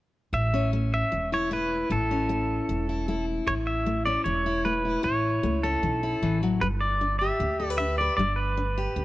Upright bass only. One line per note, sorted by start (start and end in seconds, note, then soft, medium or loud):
0.33 1.01 A1 medium
1.12 1.80 E1 medium
1.90 2.58 A1 medium
2.69 3.37 E1 medium
3.47 4.15 A1 medium
4.26 4.94 E1 medium
5.04 5.38 A1 medium
5.43 5.77 C#2 medium
5.83 6.16 B1 medium
6.22 6.56 A1 medium
6.61 7.29 G1 medium
7.40 8.08 D2 medium
8.18 8.86 G1 medium
8.96 9.05 D2 medium